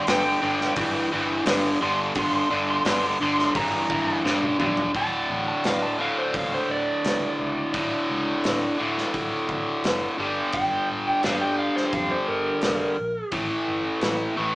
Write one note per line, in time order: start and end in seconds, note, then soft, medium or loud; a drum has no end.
0.07 0.35 G1 loud
0.07 0.38 G2 medium
0.07 0.39 D3 medium
0.07 1.43 G5 loud
0.07 snare loud
0.07 open hi-hat medium
0.41 0.70 G1 medium
0.41 0.73 G2 medium
0.41 0.73 D3 medium
0.61 snare soft
0.76 1.04 G1 loud
0.76 1.08 G2 medium
0.76 1.08 E3 medium
0.76 kick loud
0.76 open hi-hat medium
1.11 1.40 G1 medium
1.11 1.43 G2 medium
1.11 1.43 E3 medium
1.46 1.75 G1 medium
1.46 1.77 G2 medium
1.46 1.78 D3 medium
1.46 snare loud
1.46 open hi-hat medium
1.81 2.09 G1 medium
1.81 2.12 G2 medium
1.81 2.13 D3 medium
1.81 1.99 C6 loud
2.15 2.43 G1 loud
2.15 2.47 G2 medium
2.15 2.47 D3 medium
2.15 2.34 C6 loud
2.15 kick loud
2.15 open hi-hat medium
2.36 2.51 C6 loud
2.50 2.79 G1 medium
2.50 2.82 G2 medium
2.50 2.82 D3 medium
2.70 2.86 C6 loud
2.85 3.13 G1 medium
2.85 3.16 G2 medium
2.85 3.17 D3 medium
2.85 3.04 C6 loud
2.85 snare loud
2.85 open hi-hat medium
3.20 3.48 G1 medium
3.20 3.52 G2 medium
3.20 3.52 D3 medium
3.20 3.55 C6 loud
3.39 snare soft
3.55 3.83 G1 loud
3.55 3.86 G2 medium
3.55 3.87 E3 loud
3.55 4.23 A#5 loud
3.55 kick loud
3.55 open hi-hat medium
3.90 4.18 G1 medium
3.90 4.21 G2 medium
3.90 4.21 E3 medium
3.90 kick medium
4.24 4.52 G1 medium
4.24 4.56 G2 medium
4.24 4.56 D3 medium
4.24 snare medium
4.43 high tom medium
4.59 4.88 A#1 medium
4.59 4.91 G2 medium
4.59 4.91 D3 medium
4.59 mid tom medium
4.77 floor tom medium
4.94 5.17 D1 medium
4.94 6.00 D2 medium
4.94 5.97 A2 medium
4.94 5.98 D3 medium
4.94 5.29 A5 medium
4.94 kick loud
4.94 open hi-hat soft
5.30 5.52 A1 medium
5.48 5.64 A5 medium
5.64 6.08 D1 medium
5.64 5.82 F5 medium
5.64 snare loud
5.64 open hi-hat soft
5.83 5.99 A5 medium
5.98 7.72 D2 medium
5.98 7.72 A2 medium
5.98 7.71 D3 medium
5.98 6.17 F5 medium
6.18 6.34 C5 medium
6.34 6.56 C#2 medium
6.34 6.52 F5 medium
6.34 kick medium
6.34 open hi-hat soft
6.54 6.70 C5 medium
6.69 6.91 D1 medium
6.69 8.06 D5 medium
7.05 7.26 C#2 medium
7.05 snare medium
7.05 open hi-hat medium
7.39 7.61 C#2 medium
7.73 7.96 D1 medium
7.73 8.76 D2 medium
7.73 8.77 A2 medium
7.73 8.77 D3 medium
7.73 kick loud
7.73 open hi-hat soft
8.10 8.31 C#2 medium
8.44 8.66 D1 medium
8.44 snare medium
8.44 open hi-hat soft
8.78 9.02 D1 medium
8.78 10.17 D2 medium
8.78 10.16 A2 medium
8.78 10.16 D3 medium
8.98 snare soft
9.14 9.36 D1 medium
9.14 kick medium
9.14 open hi-hat soft
9.49 9.71 D1 medium
9.49 kick medium
9.84 10.06 F#1 medium
9.84 snare loud
9.84 open hi-hat soft
10.18 10.40 G1 medium
10.18 11.21 G2 medium
10.18 11.21 D3 medium
10.18 11.22 G3 medium
10.53 10.75 G1 medium
10.53 10.87 G5 loud
10.53 kick loud
10.53 open hi-hat soft
10.89 11.11 D1 medium
11.07 11.23 G5 medium
11.22 11.67 G1 medium
11.22 12.95 G2 medium
11.22 12.96 D3 medium
11.22 12.96 G3 medium
11.22 11.41 F5 medium
11.22 snare medium
11.22 open hi-hat soft
11.41 11.58 G5 medium
11.59 11.75 F5 medium
11.76 11.92 C5 medium
11.76 snare soft
11.93 12.15 F2 loud
11.93 12.10 F5 medium
11.93 kick loud
11.93 open hi-hat soft
12.11 12.28 C5 medium
12.27 12.50 G1 medium
12.27 13.29 A#4 loud
12.62 12.86 F1 medium
12.62 snare loud
12.62 open hi-hat soft
13.00 13.21 A#1 medium
13.32 13.54 A1 medium
13.32 14.34 A2 medium
13.32 14.35 E3 medium
13.32 14.36 A3 medium
13.32 kick medium
13.32 open hi-hat soft
13.68 13.89 G1 medium
14.01 14.24 A1 medium
14.01 snare loud
14.01 open hi-hat soft
14.37 14.55 A1 medium
14.37 14.55 A2 medium
14.37 14.55 E3 medium
14.37 14.55 A3 medium